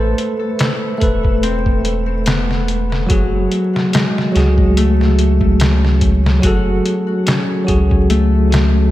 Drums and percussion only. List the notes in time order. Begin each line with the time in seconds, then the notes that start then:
0.18 closed hi-hat
0.59 snare, closed hi-hat
1.01 kick, closed hi-hat
1.25 kick
1.43 closed hi-hat
1.66 kick
1.85 closed hi-hat
2.26 snare, closed hi-hat
2.51 snare
2.68 closed hi-hat
2.92 snare
3.10 kick, closed hi-hat
3.52 closed hi-hat
3.76 snare
3.93 snare, closed hi-hat
4.18 snare
4.36 snare, closed hi-hat
4.58 kick
4.77 closed hi-hat
5.01 snare
5.19 closed hi-hat
5.41 kick
5.60 snare, closed hi-hat
5.85 snare
6.01 kick, closed hi-hat
6.26 snare
6.43 kick, closed hi-hat
6.86 closed hi-hat
7.27 snare, closed hi-hat
7.68 kick, closed hi-hat
7.91 kick
8.10 closed hi-hat
8.52 snare, closed hi-hat